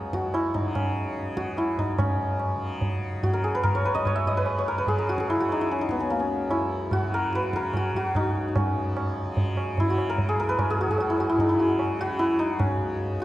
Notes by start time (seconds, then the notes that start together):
Already playing: C#2 C#3 C#4 D#4 F#4 G#4 A#4
0.04 F#2
0.13 F#4, tabla ke
0.34 E4, tabla na
0.54 D#4, tabla tin, tabla ge
0.61 C#3
0.75 C#4, tabla na, tabla ge
1.17 C#3
1.37 F#4, tabla ke
1.57 E4, tabla na
1.74 C#2, tabla tin, tabla ge
1.79 D#4
1.99 F#2 C#4, tabla na, tabla ge
2.40 tabla na
2.56 C#3
2.81 tabla tin, tabla ge
3.12 C#3
3.23 F#4, tabla tin, tabla ge
3.33 A#4
3.44 G#4
3.55 B4
3.63 A#4, tabla tin, tabla ge
3.67 C#2
3.75 C#5
3.85 B4, tabla na
3.95 D#5, tabla ke
4.05 C#5, tabla na, tabla ge
4.16 E5
4.24 F#2 D#5, tabla ge
4.37 B4
4.46 tabla na
4.58 C#5
4.68 A#4
4.78 C#3 B4
4.87 G#4, tabla tin, tabla ge
4.98 A#4
5.07 F#4, tabla na
5.18 G#4, tabla ke
5.28 E4, tabla na
5.36 C#3 F#4
5.49 D#4, tabla na
5.61 E4
5.69 C#4, tabla te
5.79 D#4, tabla te
5.89 C#2 B3, tabla ke
5.99 C#4, tabla te
6.09 A#3, tabla tin
6.19 C#4
6.48 F#2 E4, tabla na
6.91 F#4, tabla na, tabla ge
7.02 C#3
7.14 A#4
7.33 B4, tabla te
7.43 tabla te
7.53 A#4, tabla ke
7.59 C#3
7.63 tabla te
7.74 F#4, tabla na, tabla ge
7.94 F#4, tabla ge
8.13 C#2 D#4, tabla na, tabla ge
8.35 tabla te
8.48 D#4
8.56 C#4, tabla na, tabla ge
8.70 F#2
8.97 tabla na
9.25 C#3
9.37 tabla tin, tabla ge
9.57 tabla na
9.78 C#3 E4, tabla tin, tabla ge
9.90 F#4
9.98 tabla na
10.10 A#4
10.18 tabla tin, tabla ge
10.29 G#4
10.36 C#2 A#4
10.49 B4
10.59 A#4, tabla na, tabla ge
10.70 G#4
10.79 F#4, tabla te
10.89 F#2 G#4, tabla ge
10.98 F#4, tabla na
11.10 E4
11.18 F#4, tabla na
11.29 E4
11.38 D#4, tabla tin, tabla ge
11.47 C#3 E4
11.59 F#4
11.79 tabla na
11.99 C#3 F#4, tabla te
12.19 E4, tabla te
12.39 D#4, tabla te
12.57 C#2 C#4, tabla na, tabla ge
13.11 F#2
13.20 tabla te